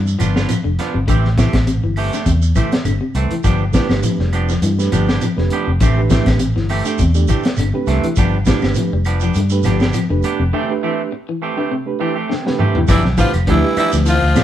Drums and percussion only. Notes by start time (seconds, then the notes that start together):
0.07 shekere
0.19 snare, closed hi-hat, claves, shekere
0.36 snare, shekere
0.49 closed hi-hat, claves, shekere
0.79 snare, closed hi-hat, shekere
1.08 kick, closed hi-hat, claves, shekere
1.25 snare
1.38 kick, snare, closed hi-hat, shekere
1.53 kick, snare, closed hi-hat, claves, shekere
1.67 closed hi-hat, shekere
1.96 open hi-hat, claves, shekere
2.13 snare, closed hi-hat, shekere
2.26 kick, closed hi-hat, shekere
2.42 shekere
2.55 kick, closed hi-hat, claves, shekere
2.72 snare, closed hi-hat, shekere
2.85 closed hi-hat, claves, shekere
3.15 closed hi-hat, shekere
3.31 closed hi-hat
3.44 kick, closed hi-hat, claves, shekere
3.73 kick, snare, closed hi-hat, shekere
3.89 snare, claves, shekere
4.03 closed hi-hat, shekere
4.20 snare
4.33 closed hi-hat, claves, shekere
4.49 snare, shekere
4.62 closed hi-hat, shekere
4.79 snare, shekere
4.92 closed hi-hat, claves, shekere
5.08 snare, shekere
5.21 closed hi-hat, claves, shekere
5.38 snare
5.50 closed hi-hat, shekere
5.80 kick, closed hi-hat, claves, shekere
6.10 kick, snare, closed hi-hat, shekere
6.26 kick, snare, closed hi-hat, claves, shekere
6.39 closed hi-hat, shekere
6.57 snare
6.69 open hi-hat, claves, shekere
6.85 closed hi-hat, shekere
6.98 kick, closed hi-hat, shekere
7.15 shekere
7.28 kick, closed hi-hat, claves, shekere
7.43 snare, closed hi-hat, shekere
7.56 closed hi-hat, claves, shekere
7.86 snare, closed hi-hat, shekere
8.04 closed hi-hat
8.16 kick, closed hi-hat, claves, shekere
8.46 kick, snare, closed hi-hat, shekere
8.61 snare, claves, shekere
8.74 closed hi-hat, shekere
9.05 closed hi-hat, claves, shekere
9.20 shekere
9.34 closed hi-hat, shekere
9.50 shekere
9.63 snare, closed hi-hat, claves, shekere
9.80 snare, shekere
9.93 closed hi-hat, claves, shekere
10.23 closed hi-hat, shekere
12.31 snare
12.47 snare
12.59 mid tom
12.75 floor tom
12.87 kick, snare, closed hi-hat, claves, shekere
13.05 snare
13.18 kick, closed hi-hat, shekere
13.33 closed hi-hat, claves, shekere
13.47 kick, closed hi-hat
13.76 closed hi-hat, claves, shekere
13.92 snare, closed hi-hat, shekere
14.06 closed hi-hat, shekere
14.36 snare, closed hi-hat, claves, shekere